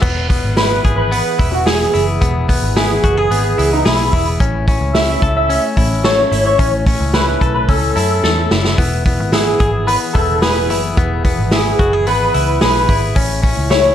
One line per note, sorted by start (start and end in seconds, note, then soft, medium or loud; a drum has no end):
0.00 0.37 E1 loud
0.00 4.36 E3 medium
0.00 0.28 B3 medium
0.00 0.57 E4 medium
0.00 13.12 E4 medium
0.00 4.36 G#4 medium
0.00 4.36 B4 medium
0.00 kick loud
0.00 crash loud
0.29 1.10 B3 medium
0.29 kick loud
0.29 hi-hat pedal medium
0.29 open hi-hat medium
0.44 0.79 G#1 medium
0.57 1.38 E4 medium
0.57 0.95 B4 loud
0.57 0.96 B4 medium
0.57 snare loud
0.57 hi-hat pedal medium
0.57 open hi-hat medium
0.84 1.19 G#1 medium
0.84 1.66 G#4 medium
0.84 kick loud
0.84 hi-hat pedal medium
0.84 open hi-hat medium
0.96 1.48 B4 medium
0.96 1.49 B4 medium
1.12 2.20 B3 medium
1.12 hi-hat pedal medium
1.12 open hi-hat medium
1.39 1.86 E1 loud
1.39 1.93 E4 medium
1.39 kick medium
1.39 hi-hat pedal medium
1.39 open hi-hat medium
1.52 1.67 F#4 medium
1.52 1.65 F#4 medium
1.66 2.04 G#4 medium
1.66 3.03 G#4 medium
1.66 snare loud
1.66 hi-hat pedal medium
1.66 open hi-hat medium
1.94 2.18 F#1 medium
1.94 2.76 E4 medium
1.94 hi-hat pedal medium
1.94 open hi-hat medium
2.21 2.57 E1 loud
2.21 2.47 B3 medium
2.21 kick loud
2.21 hi-hat pedal medium
2.21 open hi-hat loud
2.49 3.30 B3 medium
2.49 kick medium
2.49 hi-hat pedal medium
2.49 open hi-hat medium
2.62 2.97 G#1 medium
2.76 3.58 E4 medium
2.76 3.15 G#4 loud
2.76 3.15 G#4 medium
2.76 snare loud
2.76 hi-hat pedal medium
2.76 open hi-hat medium
3.04 3.27 F#1 medium
3.04 3.17 F#4 medium
3.04 kick medium
3.04 hi-hat pedal medium
3.04 open hi-hat medium
3.17 3.84 G#4 medium
3.17 3.69 G#4 loud
3.17 3.69 G#4 medium
3.30 3.54 G#1 medium
3.30 4.40 B3 medium
3.30 hi-hat pedal medium
3.30 open hi-hat medium
3.58 3.82 C#2 medium
3.58 4.13 E4 medium
3.58 hi-hat pedal medium
3.58 open hi-hat medium
3.72 3.85 D#4 medium
3.72 3.87 D#4 medium
3.85 4.09 B1 loud
3.85 4.24 E4 medium
3.85 4.25 E4 medium
3.85 4.46 G#4 medium
3.85 snare loud
3.85 hi-hat pedal medium
3.85 open hi-hat medium
4.13 4.36 E1 medium
4.13 4.95 E4 medium
4.13 kick loud
4.13 hi-hat pedal medium
4.13 open hi-hat medium
4.40 4.75 A1 loud
4.40 8.74 A3 medium
4.40 8.74 C#4 medium
4.40 4.67 C#4 medium
4.40 kick loud
4.40 hi-hat pedal medium
4.40 open hi-hat loud
4.68 5.48 C#4 medium
4.68 kick loud
4.68 hi-hat pedal medium
4.68 open hi-hat medium
4.81 5.16 C#2 medium
4.94 5.77 E4 medium
4.94 5.32 E5 medium
4.94 5.36 E5 loud
4.94 snare loud
4.94 hi-hat pedal medium
4.94 open hi-hat medium
5.22 5.57 C#2 medium
5.22 6.03 A4 medium
5.22 kick medium
5.22 hi-hat pedal medium
5.22 open hi-hat medium
5.36 5.62 E5 medium
5.36 5.62 E5 loud
5.50 6.58 C#4 medium
5.50 hi-hat pedal medium
5.50 open hi-hat medium
5.77 6.24 A1 medium
5.77 6.31 E4 medium
5.77 kick medium
5.77 hi-hat pedal medium
5.77 open hi-hat medium
6.04 7.40 A4 medium
6.04 6.43 C#5 loud
6.04 6.43 C#5 medium
6.04 snare loud
6.04 hi-hat pedal medium
6.04 open hi-hat medium
6.32 6.55 G#1 medium
6.32 7.14 E4 medium
6.32 hi-hat pedal medium
6.32 open hi-hat medium
6.45 6.71 C#5 medium
6.45 6.71 C#5 loud
6.59 6.94 A1 loud
6.59 6.86 C#4 medium
6.59 kick loud
6.59 hi-hat pedal medium
6.59 open hi-hat loud
6.86 7.68 C#4 medium
6.86 kick loud
6.86 hi-hat pedal medium
6.86 open hi-hat medium
7.00 7.35 C#2 medium
7.14 7.95 E4 medium
7.14 7.52 B4 medium
7.14 7.53 B4 loud
7.14 snare loud
7.14 hi-hat pedal medium
7.14 open hi-hat medium
7.41 7.65 B1 medium
7.41 8.23 A4 medium
7.41 kick medium
7.41 hi-hat pedal medium
7.41 open hi-hat medium
7.54 7.68 B4 loud
7.54 7.70 B4 medium
7.68 7.92 C#2 medium
7.68 8.78 C#4 medium
7.68 7.94 A4 medium
7.68 7.95 A4 loud
7.68 kick medium
7.68 hi-hat pedal medium
7.68 open hi-hat medium
7.95 8.19 F#2 medium
7.95 8.52 E4 medium
7.95 8.46 A4 medium
7.95 8.47 A4 medium
7.95 hi-hat pedal medium
7.95 open hi-hat medium
8.24 8.47 E2 loud
8.24 8.84 A4 medium
8.24 snare medium
8.51 8.74 F#1 medium
8.51 9.32 E4 medium
8.51 snare loud
8.65 snare medium
8.77 9.20 E1 loud
8.77 13.12 E3 medium
8.77 9.05 B3 medium
8.77 13.12 G#4 medium
8.77 13.12 B4 medium
8.77 kick loud
8.77 hi-hat pedal medium
8.77 open hi-hat loud
9.05 9.86 B3 medium
9.05 kick medium
9.05 hi-hat pedal medium
9.05 open hi-hat medium
9.20 9.54 G#1 medium
9.32 10.14 E4 medium
9.32 9.84 G#4 medium
9.32 snare medium
9.32 hi-hat pedal medium
9.32 open hi-hat medium
9.60 9.95 G#1 medium
9.60 10.41 G#4 medium
9.60 kick loud
9.60 hi-hat pedal medium
9.60 open hi-hat medium
9.87 10.96 B3 medium
9.87 9.95 B4 loud
9.87 10.00 B4 medium
9.87 hi-hat pedal medium
9.87 open hi-hat medium
10.14 10.70 E1 medium
10.14 10.70 E4 medium
10.14 10.41 A4 loud
10.14 10.40 A4 medium
10.14 kick loud
10.14 hi-hat pedal medium
10.14 open hi-hat medium
10.42 11.79 G#4 medium
10.42 10.80 B4 medium
10.42 10.81 B4 medium
10.42 snare loud
10.42 hi-hat pedal medium
10.42 open hi-hat medium
10.70 10.93 F#1 medium
10.70 11.52 E4 medium
10.70 hi-hat pedal medium
10.70 open hi-hat medium
10.97 11.32 E1 loud
10.97 11.23 B3 medium
10.97 kick loud
10.97 hi-hat pedal medium
10.97 open hi-hat loud
11.25 12.06 B3 medium
11.25 kick medium
11.25 hi-hat pedal medium
11.25 open hi-hat medium
11.39 11.73 G#1 medium
11.51 12.34 E4 medium
11.51 12.03 G#4 medium
11.51 12.07 G#4 loud
11.51 snare loud
11.51 hi-hat pedal medium
11.51 open hi-hat medium
11.79 12.07 F#1 medium
11.79 11.93 F#4 medium
11.79 kick loud
11.79 hi-hat pedal medium
11.79 open hi-hat medium
11.93 12.61 G#4 medium
12.07 12.30 G#1 loud
12.07 13.16 B3 medium
12.07 12.62 B4 loud
12.07 12.58 B4 medium
12.07 hi-hat pedal medium
12.07 open hi-hat medium
12.34 12.58 C#2 medium
12.34 12.88 E4 medium
12.34 hi-hat pedal medium
12.34 open hi-hat medium
12.61 12.85 B1 loud
12.61 13.22 G#4 medium
12.61 13.00 B4 medium
12.61 13.00 B4 loud
12.61 snare loud
12.61 hi-hat pedal medium
12.61 open hi-hat medium
12.89 13.12 G#1 medium
12.89 13.70 E4 medium
12.89 kick medium
12.89 hi-hat pedal medium
12.89 open hi-hat medium
13.16 13.51 A1 loud
13.16 13.95 A3 medium
13.16 13.41 C#4 loud
13.16 13.95 C#4 medium
13.16 13.95 E4 medium
13.16 kick loud
13.16 hi-hat pedal medium
13.16 open hi-hat loud
13.43 13.95 C#4 medium
13.43 kick medium
13.43 hi-hat pedal medium
13.43 open hi-hat medium
13.57 13.92 C#2 medium
13.70 13.95 E4 medium
13.70 13.95 C#5 loud
13.70 13.95 C#5 medium
13.70 snare medium
13.70 hi-hat pedal medium
13.70 open hi-hat medium